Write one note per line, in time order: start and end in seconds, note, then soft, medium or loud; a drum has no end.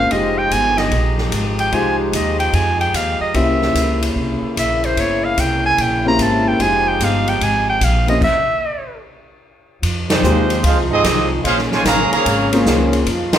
0.00 0.14 F5 loud
0.10 0.50 F1 medium
0.10 3.32 F3 medium
0.10 0.73 G#3 medium
0.10 3.32 G#3 medium
0.10 3.32 D#4 medium
0.10 0.73 D#4 medium
0.10 0.73 F4 medium
0.10 3.32 G4 medium
0.10 0.73 G4 medium
0.10 0.73 C5 medium
0.10 0.40 D#5 medium
0.10 kick soft
0.10 ride medium
0.38 0.54 G5 loud
0.51 0.90 G1 medium
0.51 0.80 G#5 loud
0.51 kick soft
0.51 hi-hat pedal medium
0.51 ride medium
0.78 1.19 D#5 medium
0.78 snare medium
0.78 ride medium
0.91 1.31 A#1 medium
0.91 kick soft
0.91 ride medium
1.18 snare soft
1.32 1.71 G#1 loud
1.32 kick soft
1.32 hi-hat pedal medium
1.32 ride medium
1.59 1.76 G5 medium
1.59 ride medium
1.72 2.12 C2 medium
1.72 2.86 G#3 medium
1.72 2.86 D#4 medium
1.72 2.86 F4 medium
1.72 2.86 G4 medium
1.72 2.86 C5 medium
1.72 1.99 G#5 loud
1.72 kick soft
1.72 ride medium
1.99 2.15 C5 medium
2.12 2.52 D#2 medium
2.12 2.39 D#5 medium
2.12 kick soft
2.12 hi-hat pedal medium
2.12 ride medium
2.39 2.56 G5 loud
2.39 ride medium
2.53 2.93 F2 loud
2.53 2.80 G#5 loud
2.53 kick soft
2.53 ride medium
2.80 2.97 G5 loud
2.80 ride soft
2.94 3.19 D#2 medium
2.94 3.21 F5 medium
2.94 kick soft
2.94 hi-hat pedal medium
2.94 ride medium
3.21 3.37 D#5 medium
3.21 muted upright bass stroke soft
3.34 3.74 C2 medium
3.34 6.56 C#3 medium
3.34 4.48 A#3 medium
3.34 6.56 A#3 medium
3.34 4.48 C#4 medium
3.34 6.56 E4 medium
3.34 4.48 E4 medium
3.34 4.48 G4 medium
3.34 4.48 C5 medium
3.34 4.16 E5 medium
3.34 kick soft
3.34 ride medium
3.62 snare soft
3.75 4.14 C#2 medium
3.75 kick soft
3.75 hi-hat pedal medium
3.75 ride medium
4.02 ride medium
4.16 4.41 C2 medium
4.16 kick soft
4.42 muted upright bass stroke soft
4.56 4.96 A#1 medium
4.56 4.87 E5 loud
4.56 kick soft
4.56 hi-hat pedal medium
4.56 ride medium
4.84 5.01 C5 medium
4.84 ride medium
4.97 5.36 G1 medium
4.97 5.26 C#5 medium
4.97 kick soft
4.97 ride medium
5.24 5.41 F5 loud
5.37 5.77 C2 medium
5.37 5.65 G5 loud
5.37 kick soft
5.37 hi-hat pedal medium
5.37 ride medium
5.66 5.83 G#5 loud
5.78 6.17 A#1 medium
5.78 6.07 G5 loud
5.78 kick soft
5.78 ride medium
6.05 6.57 A#3 medium
6.05 6.57 C#4 medium
6.05 6.57 E4 medium
6.05 6.57 G4 medium
6.05 6.57 C5 medium
6.05 6.24 A#5 loud
6.18 6.58 G#1 loud
6.18 6.50 A5 loud
6.18 kick soft
6.18 hi-hat pedal medium
6.18 ride medium
6.48 6.63 G5 loud
6.59 6.99 F1 medium
6.59 8.20 F3 medium
6.59 7.21 G#3 medium
6.59 8.20 G#3 medium
6.59 7.21 D#4 medium
6.59 8.20 D#4 medium
6.59 7.21 F4 medium
6.59 7.21 G4 medium
6.59 8.20 G4 medium
6.59 7.21 C5 medium
6.59 6.90 G#5 loud
6.59 kick soft
6.59 ride medium
6.88 7.05 G5 loud
7.00 7.39 G1 medium
7.00 kick soft
7.00 hi-hat pedal medium
7.00 ride medium
7.04 7.30 F5 loud
7.28 7.45 G5 loud
7.28 ride medium
7.40 7.80 G#1 medium
7.40 7.69 G#5 loud
7.40 kick soft
7.40 ride medium
7.70 7.86 G5 loud
7.81 8.20 A#1 loud
7.81 8.08 F5 loud
7.81 kick soft
7.81 hi-hat pedal medium
7.81 ride medium
8.07 8.20 A#3 medium
8.07 8.20 C#4 medium
8.07 8.20 E4 medium
8.07 8.20 G4 medium
8.07 8.20 C5 medium
8.07 8.21 D#5 loud
8.07 ride soft
8.22 9.00 E5 loud
8.22 kick medium
8.22 crash medium
9.82 10.22 F2 medium
9.82 11.43 F3 medium
9.82 11.43 D#4 medium
9.82 11.43 F4 medium
9.82 kick soft
9.82 ride medium
10.09 10.60 D#3 medium
10.09 10.60 G#3 medium
10.09 10.61 G#3 medium
10.09 10.60 C4 medium
10.09 10.61 D#4 medium
10.09 10.61 G4 medium
10.09 10.61 C5 medium
10.09 snare loud
10.09 ride medium
10.23 10.63 D#2 loud
10.23 10.48 G#3 medium
10.23 10.48 D#4 medium
10.23 10.48 F4 medium
10.23 10.48 G4 medium
10.23 10.48 C5 medium
10.23 hi-hat pedal medium
10.50 ride medium
10.63 10.77 C#2 medium
10.63 10.76 G#3 medium
10.63 10.75 C4 medium
10.63 10.77 D#4 medium
10.63 10.76 F4 medium
10.63 10.78 G#4 medium
10.63 10.77 C5 medium
10.63 10.78 F5 medium
10.63 kick soft
10.63 ride medium
10.77 10.90 C2 medium
10.90 11.04 G#1 medium
10.90 11.28 G#3 medium
10.90 11.28 C4 medium
10.90 11.30 C4 medium
10.90 11.28 D#4 loud
10.90 11.30 G4 medium
10.90 11.30 G#4 medium
10.90 11.30 D#5 loud
11.04 11.44 C2 loud
11.04 kick soft
11.04 snare medium
11.04 hi-hat pedal medium
11.04 ride medium
11.44 11.84 A#1 medium
11.44 13.05 C#3 medium
11.44 11.56 G#3 medium
11.44 13.05 A#3 medium
11.44 11.56 C#4 medium
11.44 13.05 C#4 medium
11.44 11.58 C#4 loud
11.44 11.56 F4 medium
11.44 11.58 G#4 loud
11.44 11.57 C5 loud
11.44 11.58 F5 loud
11.44 kick soft
11.44 ride medium
11.58 snare soft
11.71 11.83 C#3 medium
11.71 11.83 F3 medium
11.71 11.84 G#3 medium
11.71 11.86 F4 medium
11.71 11.86 C5 medium
11.71 11.85 C#5 medium
11.71 11.86 G#5 loud
11.71 snare medium
11.84 12.10 A1 medium
11.84 12.10 C#3 loud
11.84 12.10 F3 medium
11.84 12.10 A#3 medium
11.84 12.11 G#4 loud
11.84 12.11 C#5 medium
11.84 12.11 F5 loud
11.84 12.11 A#5 loud
11.84 kick soft
11.84 snare medium
11.84 hi-hat pedal medium
11.84 ride medium
12.11 12.49 C#3 medium
12.11 12.49 F3 medium
12.11 12.49 A#3 medium
12.11 12.51 G#4 medium
12.11 12.51 C#5 loud
12.11 12.51 F5 medium
12.11 12.51 A#5 loud
12.11 muted upright bass stroke soft
12.11 ride medium
12.26 12.65 G#1 medium
12.26 kick soft
12.26 ride medium
12.52 13.04 A#3 medium
12.52 13.04 C#4 medium
12.52 13.04 F4 medium
12.52 13.04 G#4 medium
12.52 13.04 C5 medium
12.52 ride medium
12.66 13.05 C#2 loud
12.66 kick soft
12.66 snare medium
12.66 hi-hat pedal medium
12.93 ride medium
13.05 13.31 F2 medium
13.05 13.38 F3 medium
13.05 13.38 D#4 medium
13.05 13.38 F4 medium
13.05 kick soft
13.05 ride medium
13.33 13.38 D#3 medium
13.33 13.38 F3 medium
13.33 13.38 C4 medium
13.33 13.38 D#4 medium
13.33 13.38 F4 medium
13.33 13.38 G4 medium
13.33 13.38 G#4 medium
13.33 13.38 C5 medium
13.33 13.38 G5 medium
13.33 muted upright bass stroke soft
13.33 snare loud
13.33 ride medium